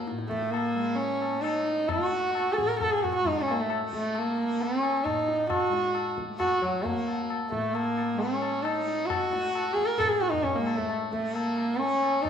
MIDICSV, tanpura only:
0, 0, Header, 1, 2, 480
1, 0, Start_track
1, 0, Tempo, 452489
1, 74, Time_signature, 4, 2, 24, 8
1, 7273, Tempo, 448096
1, 13100, End_track
2, 0, Start_track
2, 0, Title_t, "Tanpura"
2, 0, Program_c, 0, 104
2, 0, Note_on_c, 0, 45, 49
2, 0, Note_on_c, 0, 56, 54
2, 0, Note_on_c, 0, 57, 51
2, 111, Note_off_c, 0, 45, 0
2, 115, Note_on_c, 0, 45, 56
2, 783, Note_off_c, 0, 56, 0
2, 787, Note_on_c, 0, 56, 51
2, 1428, Note_off_c, 0, 57, 0
2, 1428, Note_on_c, 0, 57, 55
2, 2098, Note_off_c, 0, 57, 0
2, 2098, Note_on_c, 0, 57, 55
2, 2747, Note_off_c, 0, 45, 0
2, 2751, Note_on_c, 0, 45, 54
2, 3400, Note_off_c, 0, 56, 0
2, 3404, Note_on_c, 0, 56, 53
2, 4055, Note_off_c, 0, 57, 0
2, 4055, Note_on_c, 0, 57, 55
2, 4705, Note_off_c, 0, 57, 0
2, 4705, Note_on_c, 0, 57, 50
2, 5356, Note_off_c, 0, 45, 0
2, 5360, Note_on_c, 0, 45, 49
2, 6025, Note_off_c, 0, 56, 0
2, 6029, Note_on_c, 0, 56, 54
2, 6677, Note_off_c, 0, 57, 0
2, 6677, Note_on_c, 0, 57, 47
2, 7304, Note_off_c, 0, 57, 0
2, 7304, Note_on_c, 0, 57, 50
2, 7966, Note_off_c, 0, 45, 0
2, 7970, Note_on_c, 0, 45, 54
2, 8641, Note_off_c, 0, 56, 0
2, 8645, Note_on_c, 0, 56, 52
2, 9293, Note_off_c, 0, 57, 0
2, 9293, Note_on_c, 0, 57, 52
2, 9946, Note_off_c, 0, 57, 0
2, 9946, Note_on_c, 0, 57, 57
2, 10600, Note_off_c, 0, 45, 0
2, 10604, Note_on_c, 0, 45, 48
2, 11256, Note_off_c, 0, 56, 0
2, 11260, Note_on_c, 0, 56, 50
2, 11923, Note_off_c, 0, 57, 0
2, 11923, Note_on_c, 0, 57, 57
2, 12573, Note_off_c, 0, 57, 0
2, 12573, Note_on_c, 0, 57, 57
2, 13100, Note_off_c, 0, 45, 0
2, 13100, Note_off_c, 0, 56, 0
2, 13100, Note_off_c, 0, 57, 0
2, 13100, End_track
0, 0, End_of_file